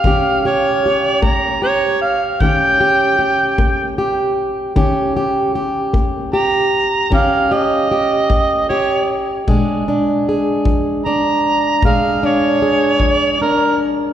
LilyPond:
<<
  \new Staff \with { instrumentName = "Harmonica" } { \time 12/8 \key ees \major \tempo 4. = 51 f''8 des''4 bes''8 des''8 f''8 g''2 r4 | r2 bes''4 f''8 ees''4. des''8 r8 | r2 bes''4 f''8 des''4. bes'8 r8 | }
  \new Staff \with { instrumentName = "Steel-string acoustic guitar" } { \time 12/8 \key ees \major << { <des' g'>8 g'8 g'4 g'4 <des' g'>8 g'8 g'4 g'4 | <des' g'>8 g'8 g'4 g'4 <des' g'>8 g'8 g'4 g'4 | <aes d' aes'>8 d'8 aes'4 d'4 <aes d' aes'>8 d'8 aes'4 d'4 | } \\ { ees4 r8 bes4 r8 ees4 r8 bes4 r8 | ees4 r8 bes4 r8 ees4 r8 bes4 r8 | bes,4 r8 f4 r8 bes,4 r8 f4 r8 | } >> }
  \new DrumStaff \with { instrumentName = "Drums" } \drummode { \time 12/8 bd4. bd4. bd4. bd4. | bd4. bd4. bd4. bd4. | bd4. bd4. bd4. bd4. | }
>>